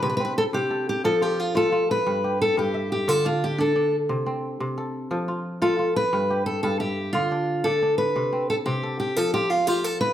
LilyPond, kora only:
<<
  \new Staff \with { instrumentName = "Kora" } { \time 12/8 \key c \major \tempo 4. = 118 e'16 r16 c'4. a'4 a'8 f'4 f'8 f'4~ | f'8 g'4. e''4 f'8 d'4 d'8 d'4~ | d'8 c'4. a'4 a'8 f'4 f'8 f'4~ | f'8 g'4. e''4 f'8 d'4. d'4~ |
d'8 c'4. a'4 a'8 f'4 f'4. | }
  \new Staff \with { instrumentName = "Kora" } { \clef bass \time 12/8 \key c \major c4 r8 c4 r8 f4 r8 f'4 r8 | g,4 r8 g,4 r8 d4 r8 d'4 r8 | c4 r8 c4 r8 f4 r8 f'4 r8 | g,4 r8 g,4 r8 d4 r8 d'4 r8 |
c4 r8 c4 r8 f4 r8 f'4 r8 | }
>>